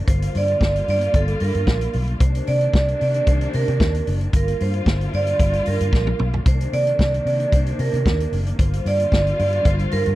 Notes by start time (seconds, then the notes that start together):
0.07 G1 D3 G3 A#3 F4 C5, kick, closed hi-hat
0.22 closed hi-hat
0.35 G2 D5, open hi-hat
0.48 closed hi-hat
0.61 G1, kick, snare
0.76 closed hi-hat
0.88 G2 D5, open hi-hat
1.01 closed hi-hat
1.14 G1 A4, kick, closed hi-hat
1.28 closed hi-hat
1.40 G2 A#4, open hi-hat
1.54 G2, closed hi-hat
1.67 A#1, kick, snare
1.81 closed hi-hat
1.93 B1, open hi-hat
2.07 closed hi-hat
2.20 C2 C3 D#3 A#3 D4 C5, kick, closed hi-hat
2.35 closed hi-hat
2.47 C3 D5, open hi-hat
2.61 closed hi-hat
2.73 C2, kick, snare
2.88 closed hi-hat
3.01 C3 D5, open hi-hat
3.14 closed hi-hat
3.27 C2 C5, kick, closed hi-hat
3.41 closed hi-hat
3.53 C3 A#4, open hi-hat
3.68 C3, closed hi-hat
3.80 D#2, kick, snare
3.94 closed hi-hat
4.07 F#1, open hi-hat
4.21 closed hi-hat
4.33 G1 D3 G3 A#3 F4 A#4, kick, closed hi-hat
4.48 closed hi-hat
4.60 G2 C5, open hi-hat
4.74 closed hi-hat
4.86 G1, kick, snare
5.01 closed hi-hat
5.13 G2 D5, open hi-hat
5.27 closed hi-hat
5.39 G1, kick, closed hi-hat
5.53 closed hi-hat
5.66 G2 A#4, open hi-hat
5.80 G2, closed hi-hat
5.93 A#1, kick, snare
6.07 high tom
6.19 B1, mid tom
6.34 floor tom
6.44 C2 C3 D#3 D4 C5, kick, closed hi-hat
6.60 closed hi-hat
6.73 C3 D5, open hi-hat
6.87 closed hi-hat
6.99 C2, kick, snare
7.14 closed hi-hat
7.26 C3 D5, open hi-hat
7.40 closed hi-hat
7.52 C2 C5, kick, closed hi-hat
7.66 closed hi-hat
7.79 C3 A#4, open hi-hat
7.93 C3, closed hi-hat
8.06 D#2, kick, snare
8.20 closed hi-hat
8.32 F#1, open hi-hat
8.46 closed hi-hat
8.59 G1 D3 G3 F4 C5, kick, closed hi-hat
8.73 closed hi-hat
8.86 G2 D5, open hi-hat
9.00 closed hi-hat
9.12 G1, kick, snare
9.27 closed hi-hat
9.39 G2 D5, open hi-hat
9.53 closed hi-hat
9.65 G1 C5, kick, closed hi-hat
9.79 closed hi-hat
9.91 G2 A#4, open hi-hat
10.06 G2, closed hi-hat